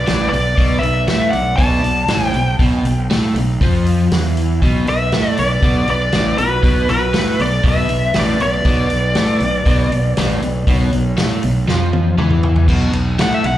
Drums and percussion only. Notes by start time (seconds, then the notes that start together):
0.07 snare, open hi-hat
0.34 open hi-hat
0.58 kick, open hi-hat
0.83 open hi-hat
1.08 snare, open hi-hat
1.33 open hi-hat
1.58 kick, open hi-hat
1.84 open hi-hat
2.08 snare, open hi-hat
2.34 open hi-hat
2.59 kick, open hi-hat
2.85 open hi-hat
3.11 snare, open hi-hat
3.36 open hi-hat
3.61 kick, open hi-hat
3.86 open hi-hat
4.12 snare, open hi-hat
4.37 open hi-hat
4.62 kick, open hi-hat
4.87 open hi-hat
5.12 snare, open hi-hat
5.37 open hi-hat
5.62 kick, open hi-hat
5.88 open hi-hat
6.12 snare, open hi-hat
6.38 open hi-hat
6.63 kick, open hi-hat
6.89 open hi-hat
7.14 snare, open hi-hat
7.40 open hi-hat
7.64 kick, open hi-hat
7.89 open hi-hat
8.14 snare, open hi-hat
8.40 open hi-hat
8.65 kick, open hi-hat
8.90 open hi-hat
9.15 snare, open hi-hat
9.40 open hi-hat
9.66 kick, open hi-hat
9.92 open hi-hat
10.17 snare, open hi-hat
10.42 open hi-hat
10.67 kick, open hi-hat
10.93 open hi-hat
11.17 snare, open hi-hat
11.43 open hi-hat
11.68 snare
11.93 high tom
12.18 mid tom
12.30 mid tom
12.43 floor tom
12.56 floor tom
12.68 kick, crash
12.93 ride
13.19 snare, ride
13.44 ride